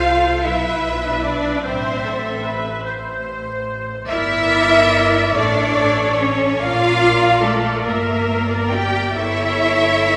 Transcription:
Already playing: double bass section C2, cello section F4, viola section A4 C5, violin section F5
0.45 double bass section B1, cello section E4, viola section B4 E5, violin section E5
0.92 cello section F4
1.00 cello section E4
1.08 cello section D4
1.17 cello section E4
1.24 cello section D4, violin section D5
1.65 double bass section A1, cello section C4, violin section C5, viola section C5 E5
2.05 viola section A4
2.44 viola section B4
2.85 viola section C5
4.07 double bass section G1, cello section E4, viola section A#4 D5, violin section E5
5.35 double bass section A1, cello section D4, viola section A4 C#5, violin section D5
6.18 cello section C#4, violin section C#5
6.59 double bass section A#1, cello section F4, viola section A#4 D5, violin section F5
7.41 cello section A3, violin section A4
7.83 double bass section G1, cello section A#3, violin section A#4, viola section A#4 E5
8.50 viola section D5
8.70 cello section G4, violin section G5
9.13 double bass section G1, cello section E4, viola section A4 C#5, violin section E5

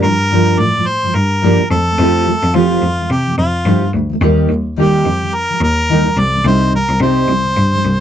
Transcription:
0.02 cello G2, steel-string acoustic guitar G2 F3 G3, harmonica A#4
0.30 steel-string acoustic guitar G2 F3 G3 A#3 D4 G4
0.57 steel-string acoustic guitar G2 F3 G3, cello A2, harmonica D5
0.74 steel-string acoustic guitar G2 F3 G3
0.87 harmonica C5
1.02 steel-string acoustic guitar G2 F3 G3
1.14 cello G2, harmonica A#4
1.42 steel-string acoustic guitar G2 F3 G3 A#3 D4 G4
1.59 steel-string acoustic guitar G2 F3 G3
1.70 cello F2, steel-string acoustic guitar F3 A3, harmonica A4
1.88 steel-string acoustic guitar F3 A3
1.98 cello F2, steel-string acoustic guitar F3 A3 C4 F4 G4
2.26 steel-string acoustic guitar F3 A3
2.43 cello F2
2.53 steel-string acoustic guitar F3 A3 C4 F4 G4, cello F3, harmonica F4
2.82 cello F2, steel-string acoustic guitar F3 A3
2.99 steel-string acoustic guitar F3 A3
3.10 cello C3, harmonica G4
3.27 steel-string acoustic guitar F3 A3
3.38 cello F2, harmonica F4
3.65 cello G2, steel-string acoustic guitar F3 A3 C4 F4 G4
3.82 steel-string acoustic guitar F3 A3
3.93 cello D2, steel-string acoustic guitar F3 A3
4.10 steel-string acoustic guitar F3 A3
4.21 cello D#2, steel-string acoustic guitar D#3 G3 A#3 D#4 G4
4.48 cello D#2, steel-string acoustic guitar D#3 G3
4.77 steel-string acoustic guitar D#3 G3 A#3 D#4 G4, harmonica G4
5.05 cello F2, steel-string acoustic guitar D#3 G3
5.22 steel-string acoustic guitar D#3 G3
5.35 harmonica A#4
5.49 steel-string acoustic guitar D#3 G3
5.61 cello D#2, harmonica A#4
5.89 steel-string acoustic guitar D#3 G3 A#3 D#4 G4
6.06 steel-string acoustic guitar D#3 G3
6.16 cello C2, steel-string acoustic guitar C3 G3, harmonica D5
6.33 steel-string acoustic guitar C3 G3
6.44 cello C2, steel-string acoustic guitar C3 G3 C4 D#4 G4, harmonica C5
6.72 steel-string acoustic guitar C3 G3, harmonica A#4
6.89 cello C2
7.00 steel-string acoustic guitar C3 G3 C4 D#4 G4, cello C3, harmonica C5
7.27 cello C2, steel-string acoustic guitar C3 G3
7.44 steel-string acoustic guitar C3 G3
7.57 cello G2
7.71 steel-string acoustic guitar C3 G3
7.85 cello C2

